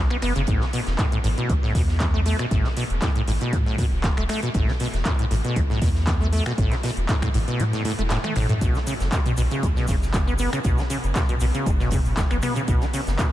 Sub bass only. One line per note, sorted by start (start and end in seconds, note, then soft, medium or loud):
0.00 0.16 B1 loud
0.22 0.32 F#1 medium
0.36 0.45 F#1 medium
0.48 0.58 A1 medium
0.87 0.96 E1 medium
1.24 1.34 A1 medium
1.49 1.60 C#2 medium
1.75 2.34 E2 medium
2.51 2.61 A1 loud
2.90 2.99 E1 loud
3.27 3.38 A1 medium
3.53 3.86 A2 loud
3.92 4.10 E1 medium
4.17 4.26 E1 loud
4.55 4.65 A1 loud
4.93 5.02 E1 medium
5.31 5.41 A1 medium
5.56 5.66 C#2 medium
5.82 6.41 E2 medium
6.58 6.68 A1 medium
6.97 7.06 E1 medium
7.34 7.44 A1 medium
7.60 7.93 A2 loud
7.99 8.17 E1 medium
8.36 8.46 A1 medium
8.49 8.58 A2 medium
8.61 8.71 B1 loud
9.00 9.09 F#1 medium
9.38 9.48 B1 medium
9.63 9.73 D#2 medium
9.88 10.47 F#1 medium
10.65 10.75 B1 loud
11.04 11.13 F#1 medium
11.41 11.51 B1 medium
11.66 12.00 F#1 loud
12.05 12.24 F#1 medium
12.31 12.40 F#1 loud
12.68 12.78 B1 loud
13.07 13.16 F#1 medium